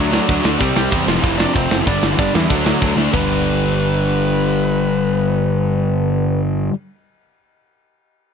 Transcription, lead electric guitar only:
Already playing: F#3 F#4
0.59 G3 G4
1.06 F3 F4
1.15 E3 E4
1.37 D4 D5
1.55 C4 C5
1.81 E3 E4
1.88 D4 D5
2.13 E3 E4
2.19 D4 D5
2.35 E3 E4
2.51 F#3 F#4
3.13 B4

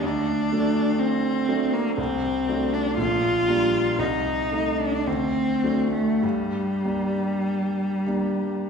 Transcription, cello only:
0.02 D4
1.00 C4
1.73 A#3
1.97 C4
2.74 D4
2.99 F4
3.99 D#4
4.80 D4
5.07 C4
5.92 A3
6.23 G3

